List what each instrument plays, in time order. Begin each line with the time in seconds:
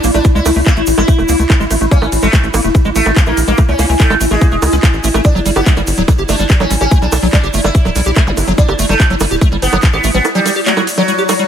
Already playing: synth drone E4
0.04 analog synth bass A#1, acid bass A#3, open hi-hat, ride, shaker
0.14 analog synth bass A#1, acid bass A3, sitar D4, closed hi-hat, high bongo, shaker
0.24 kick, closed hi-hat, shaker
0.35 analog synth bass C#2, acid bass G#3, sitar E4, shaker
0.46 analog synth bass C#2, acid bass A3, open hi-hat, ride, high bongo, shaker
0.55 analog synth bass C#2, acid bass A3, open hi-hat, shaker
0.66 acid bass A#3, sitar E4, kick, clap, closed hi-hat, high bongo, shaker
0.77 analog synth bass A1, acid bass A3, closed hi-hat, shaker
0.87 analog synth bass A1, open hi-hat, ride, shaker
0.98 analog synth bass A1, acid bass G#3, sitar E4, closed hi-hat, high bongo, shaker
1.08 acid bass A3, kick, closed hi-hat, shaker
1.19 analog synth bass E1, acid bass A3, high bongo, shaker
1.28 analog synth bass C#2, acid bass A#3, open hi-hat, ride, shaker
1.39 analog synth bass C#2, acid bass A3, closed hi-hat, shaker
1.50 kick, clap, closed hi-hat, high bongo, shaker
1.60 analog synth bass A1, acid bass G#3, shaker
1.71 analog synth bass A1, acid bass A3, open hi-hat, ride, high bongo, shaker
1.81 analog synth bass A1, acid bass A3, closed hi-hat, shaker
1.91 acid bass A#3, sitar C#4, kick, closed hi-hat, shaker
2.02 analog synth bass A1, acid bass A3, high bongo, shaker
2.12 analog synth bass A1, open hi-hat, ride, shaker
2.23 analog synth bass A1, acid bass G#3, sitar A3, closed hi-hat, high bongo, shaker
2.33 acid bass A3, kick, clap, closed hi-hat, shaker
2.44 analog synth bass A1, acid bass A3, closed hi-hat, shaker
2.54 analog synth bass A1, acid bass A#3, open hi-hat, ride, high bongo, shaker
2.64 analog synth bass E1, acid bass A3, closed hi-hat, shaker
2.75 kick, closed hi-hat, high bongo, shaker
2.85 analog synth bass A1, acid bass G#3, shaker
2.96 analog synth bass A1, acid bass A3, sitar A3, open hi-hat, ride, shaker
3.06 analog synth bass A1, acid bass A3, closed hi-hat, high bongo, shaker
3.16 acid bass A#3, kick, clap, closed hi-hat, shaker
3.26 analog synth bass A#1, acid bass A3, sitar A#3, high bongo, shaker
3.37 analog synth bass A#1, open hi-hat, ride, shaker
3.48 analog synth bass A#1, acid bass G#3, sitar A#3, closed hi-hat, shaker
3.58 acid bass A3, kick, closed hi-hat, high bongo, shaker
3.68 analog synth bass C#2, acid bass A3, sitar C#4, shaker
3.79 analog synth bass C#2, acid bass A#3, open hi-hat, ride, high bongo, shaker
3.89 analog synth bass C#2, acid bass A3, open hi-hat, shaker
4.00 sitar A3, kick, clap, closed hi-hat, shaker
4.10 analog synth bass A1, acid bass G#3, closed hi-hat, high bongo, shaker
4.21 analog synth bass A1, acid bass A3, open hi-hat, ride, shaker
4.31 analog synth bass A1, sitar G#3, acid bass A3, closed hi-hat, high bongo, shaker
4.41 acid bass A#3, kick, closed hi-hat, shaker
4.52 analog synth bass E1, acid bass A3, shaker
4.62 analog synth bass C#2, open hi-hat, ride, high bongo, shaker
4.72 analog synth bass C#2, acid bass C#4, closed hi-hat, shaker
4.83 acid bass A#3, kick, clap, closed hi-hat, high bongo, shaker
4.93 analog synth bass A1, shaker
5.04 analog synth bass A1, acid bass A3, open hi-hat, ride, shaker
5.14 analog synth bass A1, acid bass A3, closed hi-hat, high bongo, shaker
5.24 sitar D4, kick, closed hi-hat, high bongo, shaker
5.35 analog synth bass G1, acid bass F#3, shaker
5.46 analog synth bass G1, acid bass G3, open hi-hat, ride, shaker
5.56 analog synth bass G1, sitar B3, acid bass G4, closed hi-hat, high bongo, shaker
5.66 acid bass A3, kick, clap, closed hi-hat, shaker
5.76 analog synth bass G1, acid bass G3, closed hi-hat, high bongo, shaker
5.87 analog synth bass G1, open hi-hat, ride, shaker
5.97 analog synth bass D1, acid bass F#3, closed hi-hat, shaker
6.08 acid bass G3, kick, closed hi-hat, high bongo, shaker
6.18 analog synth bass G1, acid bass G4, shaker
6.29 analog synth bass G1, acid bass A3, sitar D4, open hi-hat, ride, high bongo, shaker
6.39 analog synth bass G1, acid bass G3, closed hi-hat, shaker
6.49 kick, clap, closed hi-hat, shaker
6.60 analog synth bass A1, acid bass F#3, sitar C#4, high bongo, shaker
6.71 analog synth bass A1, acid bass G3, open hi-hat, ride, shaker
6.81 analog synth bass A1, sitar C#4, acid bass G4, closed hi-hat, high bongo, shaker
6.91 acid bass A3, kick, closed hi-hat, shaker
7.02 analog synth bass B1, acid bass G3, sitar D4, shaker
7.12 analog synth bass B1, open hi-hat, ride, high bongo, shaker
7.22 analog synth bass B1, acid bass F#3, open hi-hat, shaker
7.33 acid bass G3, sitar D4, kick, clap, closed hi-hat, high bongo, shaker
7.43 analog synth bass G1, acid bass G4, closed hi-hat, shaker
7.54 analog synth bass G1, acid bass A3, open hi-hat, ride, shaker
7.64 analog synth bass G1, acid bass G3, sitar E4, high bongo, shaker
7.75 kick, closed hi-hat, shaker
7.85 analog synth bass D1, acid bass F#3, high bongo, shaker
7.95 analog synth bass B1, acid bass G3, open hi-hat, ride, shaker
8.06 analog synth bass B1, acid bass G4, closed hi-hat, shaker
8.16 acid bass A3, kick, clap, closed hi-hat, high bongo, shaker
8.27 analog synth bass G1, acid bass G3, zap, shaker
8.37 analog synth bass G1, open hi-hat, ride, high bongo, shaker
8.47 analog synth bass G1, acid bass F#3, closed hi-hat, shaker
8.58 acid bass G3, sitar D4, kick, closed hi-hat, shaker
8.68 analog synth bass G1, acid bass G4, high bongo, shaker
8.79 analog synth bass G1, acid bass A3, open hi-hat, ride, shaker
8.89 analog synth bass G1, acid bass G3, sitar A3, closed hi-hat, high bongo, shaker
9.00 kick, clap, closed hi-hat, shaker
9.10 analog synth bass G1, acid bass F#3, closed hi-hat, shaker
9.20 analog synth bass G1, acid bass G3, open hi-hat, ride, high bongo, shaker
9.31 analog synth bass D1, acid bass G4, closed hi-hat, shaker
9.41 acid bass A3, kick, closed hi-hat, high bongo, shaker
9.52 analog synth bass G1, acid bass G3, shaker
9.62 analog synth bass G1, sitar B3, open hi-hat, ride, shaker
9.72 analog synth bass G1, acid bass F#3, closed hi-hat, high bongo, shaker
9.82 acid bass G3, kick, clap, closed hi-hat, shaker
9.93 analog synth bass A1, sitar B3, acid bass G4, high bongo, shaker
10.04 analog synth bass A1, acid bass A3, open hi-hat, ride, shaker
10.14 analog synth bass A1, acid bass G3, sitar B3, closed hi-hat, shaker
10.25 closed hi-hat, high bongo, shaker
10.35 acid bass F#3, sitar G3, closed hi-hat, shaker
10.46 acid bass G3, open hi-hat, ride, high bongo, shaker
10.55 acid bass G4, open hi-hat, shaker
10.66 sitar F#3, acid bass A3, clap, closed hi-hat, shaker
10.77 acid bass G3, closed hi-hat, high bongo, shaker
10.87 open hi-hat, ride, shaker
10.98 sitar F#3, acid bass F#3, closed hi-hat, high bongo, shaker
11.08 acid bass G3, closed hi-hat, shaker
11.18 acid bass G4, closed hi-hat, shaker
11.29 acid bass G3, open hi-hat, ride, high bongo, shaker
11.39 acid bass G3, closed hi-hat, shaker